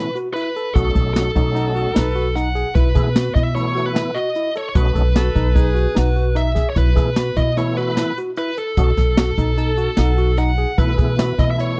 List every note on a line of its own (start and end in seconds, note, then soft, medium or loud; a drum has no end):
0.00 0.11 E3 medium
0.00 0.11 A3 medium
0.00 0.11 B3 medium
0.00 0.11 C#4 medium
0.00 0.15 B4 medium
0.15 0.28 F#4 medium
0.15 closed hi-hat soft
0.34 0.48 E4 medium
0.34 0.76 B4 medium
0.34 closed hi-hat medium
0.56 0.68 A4 medium
0.56 closed hi-hat soft
0.74 0.92 B1 medium
0.74 1.31 F#3 medium
0.74 1.32 A3 medium
0.74 1.32 C#4 medium
0.74 1.32 D#4 medium
0.74 0.88 F#4 medium
0.74 1.12 A4 medium
0.74 kick medium
0.74 closed hi-hat medium
0.95 1.28 B1 medium
0.95 1.08 A4 medium
0.95 kick medium
0.95 closed hi-hat soft
1.14 1.28 F#4 medium
1.14 2.38 A4 medium
1.14 snare medium
1.14 closed hi-hat medium
1.35 1.85 B1 medium
1.35 1.91 F#3 soft
1.35 1.92 A3 soft
1.35 1.92 C#4 soft
1.35 1.48 D#4 medium
1.35 1.92 D#4 soft
1.35 kick medium
1.35 closed hi-hat medium
1.55 1.67 D#4 medium
1.55 1.96 F#4 medium
1.55 snare soft
1.55 closed hi-hat medium
1.75 1.87 F#4 medium
1.75 closed hi-hat medium
1.95 2.62 B1 medium
1.95 2.07 D#4 medium
1.95 2.25 B4 medium
1.95 snare medium
1.95 closed hi-hat medium
2.15 2.28 F#4 medium
2.15 closed hi-hat medium
2.36 2.48 D#4 medium
2.36 2.73 F#5 medium
2.36 snare soft
2.36 closed hi-hat medium
2.55 2.68 G#4 medium
2.55 closed hi-hat medium
2.75 2.92 B1 medium
2.75 2.88 E4 medium
2.75 3.34 B4 medium
2.75 kick medium
2.75 closed hi-hat medium
2.95 3.28 B2 medium
2.95 3.09 E3 medium
2.95 3.09 A3 medium
2.95 3.09 B3 medium
2.95 3.10 E4 medium
2.95 3.08 G#4 medium
2.95 kick medium
2.95 snare soft
2.95 closed hi-hat medium
3.16 3.28 F#4 medium
3.16 snare medium
3.16 closed hi-hat medium
3.35 4.01 B2 medium
3.35 3.48 E4 medium
3.35 3.43 D#5 medium
3.35 kick medium
3.35 closed hi-hat medium
3.43 3.55 E5 medium
3.55 4.11 E3 medium
3.55 4.11 A3 medium
3.55 4.12 B3 medium
3.55 3.68 E4 medium
3.55 4.12 E4 medium
3.55 3.85 C#5 medium
3.55 closed hi-hat medium
3.75 3.88 F#4 medium
3.75 closed hi-hat soft
3.86 4.17 B4 medium
3.95 4.08 E4 medium
3.95 snare medium
3.95 closed hi-hat medium
4.15 4.28 F#4 medium
4.15 4.52 D#5 medium
4.15 closed hi-hat soft
4.35 4.48 E4 medium
4.35 closed hi-hat medium
4.55 4.68 A4 medium
4.55 4.68 C#5 medium
4.55 closed hi-hat medium
4.69 4.76 C#5 medium
4.75 4.92 B1 medium
4.75 5.03 F#3 medium
4.75 5.03 A3 medium
4.75 5.04 C#4 medium
4.75 5.04 D#4 medium
4.75 4.88 F#4 medium
4.75 6.41 B4 medium
4.75 kick loud
4.75 closed hi-hat medium
4.95 5.29 B1 medium
4.95 5.08 A4 medium
4.95 kick medium
4.95 closed hi-hat medium
5.16 5.28 F#4 medium
5.16 5.57 A4 loud
5.16 snare medium
5.16 closed hi-hat medium
5.35 5.85 B1 medium
5.35 5.48 D#4 medium
5.35 kick medium
5.35 closed hi-hat medium
5.55 5.68 D#4 medium
5.55 5.98 G#4 medium
5.55 kick loud
5.55 closed hi-hat medium
5.75 5.87 F#4 medium
5.75 closed hi-hat medium
5.95 6.62 B1 medium
5.95 6.08 D#4 medium
5.95 6.26 F#4 medium
5.95 snare medium
5.95 closed hi-hat medium
6.16 6.28 F#4 medium
6.16 closed hi-hat soft
6.35 6.48 D#4 medium
6.35 6.69 E5 medium
6.35 closed hi-hat medium
6.55 6.68 G#4 medium
6.55 kick medium
6.55 snare soft
6.55 closed hi-hat soft
6.70 6.76 C#5 medium
6.76 6.93 B1 medium
6.76 6.89 E4 medium
6.76 7.39 B4 medium
6.76 kick medium
6.76 closed hi-hat medium
6.95 7.29 B2 medium
6.95 7.10 E3 medium
6.95 7.10 A3 medium
6.95 7.10 B3 medium
6.95 7.10 E4 medium
6.95 7.09 G#4 medium
6.95 kick medium
6.95 snare soft
6.95 closed hi-hat soft
7.16 7.29 F#4 medium
7.16 snare loud
7.16 closed hi-hat medium
7.36 8.03 B2 medium
7.36 7.49 E4 medium
7.36 7.57 D#5 medium
7.36 kick medium
7.36 closed hi-hat medium
7.57 8.13 E3 medium
7.57 8.13 A3 medium
7.57 8.13 B3 medium
7.57 7.70 E4 medium
7.57 8.13 E4 medium
7.57 7.77 C#5 medium
7.57 snare soft
7.57 closed hi-hat medium
7.77 7.90 F#4 medium
7.77 8.17 B4 medium
7.77 closed hi-hat soft
7.97 8.10 E4 medium
7.97 snare medium
7.97 closed hi-hat medium
8.17 8.30 F#4 medium
8.17 closed hi-hat medium
8.36 8.50 E4 medium
8.36 8.58 B4 medium
8.36 closed hi-hat medium
8.57 8.70 A4 medium
8.57 9.18 A4 medium
8.57 closed hi-hat medium
8.77 8.94 B1 medium
8.77 8.91 F#3 medium
8.77 8.91 A3 medium
8.77 8.92 C#4 medium
8.77 8.92 D#4 medium
8.77 8.90 F#4 medium
8.77 kick medium
8.77 closed hi-hat medium
8.97 9.30 B1 medium
8.97 9.10 A4 medium
8.97 kick medium
8.97 snare soft
8.97 closed hi-hat medium
9.17 9.30 F#4 medium
9.17 10.43 A4 medium
9.17 snare loud
9.17 closed hi-hat medium
9.38 9.87 B1 medium
9.38 9.51 D#4 medium
9.38 kick medium
9.38 closed hi-hat medium
9.57 9.70 D#4 medium
9.57 10.00 A4 medium
9.57 closed hi-hat medium
9.77 9.90 F#4 medium
9.77 closed hi-hat medium
9.97 10.64 B1 medium
9.97 10.10 D#4 medium
9.97 10.28 F#4 medium
9.97 snare medium
9.97 closed hi-hat medium
10.18 10.30 F#4 medium
10.18 closed hi-hat soft
10.37 10.51 D#4 medium
10.37 10.76 F#5 medium
10.37 closed hi-hat medium
10.57 10.71 G#4 medium
10.57 closed hi-hat soft
10.78 10.95 B1 medium
10.78 11.34 E3 medium
10.78 11.34 A3 medium
10.78 11.34 B3 medium
10.78 10.91 E4 medium
10.78 11.35 E4 medium
10.78 11.41 B4 medium
10.78 kick medium
10.78 closed hi-hat medium
10.98 11.32 B2 medium
10.98 11.11 G#4 medium
10.98 kick medium
10.98 closed hi-hat medium
11.18 11.31 F#4 medium
11.18 snare loud
11.18 closed hi-hat medium
11.38 11.80 B2 medium
11.38 11.80 E3 soft
11.38 11.80 A3 soft
11.38 11.80 B3 soft
11.38 11.51 E4 medium
11.38 11.80 E4 medium
11.38 11.49 D#5 medium
11.38 kick medium
11.38 snare soft
11.38 closed hi-hat medium
11.51 11.60 E5 medium
11.58 11.71 E4 medium
11.58 11.80 C#5 medium
11.58 closed hi-hat medium